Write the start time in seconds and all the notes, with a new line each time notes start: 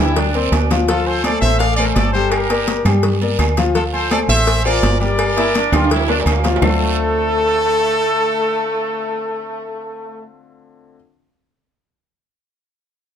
0.00 D2 G3 E4 G4 G5
0.16 D4, cowbell, high conga, low conga, low timbale, long guiro
0.34 A#3 C4 A#4 D5, high conga, low agogo
0.52 D2 D4, cowbell, high conga, low timbale, low agogo, short guiro
0.70 F3 F4 F5, cowbell, high conga, low timbale, short guiro
0.88 F3 F4 A4 F5, cowbell, high conga, low agogo, long guiro
1.06 A4 C5, high conga, low agogo
1.24 A3 A4 C5 D5, cowbell, high conga, low agogo, short guiro, claves
1.42 A1 A3 A4 C5 E5, high conga, short guiro
1.59 D5 F5, cowbell, high conga, low agogo, long guiro
1.77 A3 A4 A#4 C5 D5, high conga, low agogo, claves
1.95 G1 A4 D5, cowbell, high conga, low timbale, low agogo, short guiro
2.13 G3 G4 A4 C5 G5, high conga, short guiro
2.31 G4 A#4, cowbell, high conga, low agogo, long guiro, claves
2.50 A#3 A#4 D5, cowbell, high conga, low agogo
2.67 cowbell, high conga, short guiro
2.85 G2 G3 G4 G5, cowbell, high conga, low conga, low agogo, short guiro, claves
3.03 cowbell, high conga, low conga, long guiro
3.21 A#3 A#4 D5, high conga, low agogo
3.39 D2, cowbell, high conga, low timbale, low agogo, short guiro, claves
3.57 F3 F4 F5, cowbell, high conga, short guiro
3.75 F3 F4 A4 F5, cowbell, high conga, low agogo, long guiro
3.93 A4 C5, high conga, low agogo
4.11 A3 A4 C5 D5, cowbell, high conga, low agogo, short guiro, claves
4.28 A1 A3 A4 C5 E5, high conga, short guiro
4.47 cowbell, high conga, low agogo, long guiro
4.65 C4 F4 A#4 C5 D5, high conga, low agogo, claves
4.82 G1, cowbell, high conga, low timbale, low agogo, short guiro
5.00 G3 G4 A#4 D5 G5, high conga, short guiro
5.18 cowbell, high conga, low agogo, long guiro, claves
5.37 A#3 E4 A#4 D5, cowbell, high conga, low agogo
5.54 D4, cowbell, high conga, short guiro
5.72 D2 G3 F4 G4 G5, cowbell, high conga, low conga, high timbale, low agogo, short guiro, claves
5.84 high timbale
5.90 E4, cowbell, high conga, low conga, long guiro
5.96 low timbale
6.08 A#3 D4 A#4 D5, high conga, low timbale, low agogo
6.20 low timbale
6.26 D2 A#3, cowbell, high conga, low agogo, short guiro, claves
6.32 low timbale
6.44 F3 F4 F5, cowbell, high conga, low timbale, short guiro
6.56 low timbale
6.61 D2 D3 A3 C4 D4 F4 A4, low bongo, low conga, low timbale, long guiro, claves